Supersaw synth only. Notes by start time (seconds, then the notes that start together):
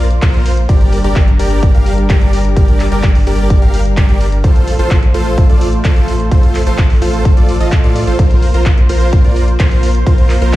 0.22 F4 A#4 C5
0.69 G4 A#4 D5
1.04 G4 A#4 D5
1.39 G4 A#4 D5
1.75 G4 A#4 F5
2.10 G4 A#4 D5
2.57 G4 A#4 D5
2.92 G4 A#4 D5
3.27 G4 A#4 D5
3.62 G4 A#4 F5
3.97 G4 A#4 D5
4.44 F4 A4 C5
4.79 F4 A4 C5
5.14 F4 A4 C5
5.49 F4 A4 D5
5.85 F4 A4 C5
6.32 F4 A4 C5
6.67 F4 A4 C5
7.02 F4 A4 C5
7.37 F4 A4 D5
7.60 F4 A4 D#5
7.84 F4 A4 D5
8.07 F4 A4 C5
8.19 F4 A#4 C5
8.54 F4 A#4 C5
8.89 F4 A#4 C5
9.25 F4 A#4 D5
9.60 F4 A#4 C5
10.07 F4 A#4 C5
10.42 F4 A#4 C5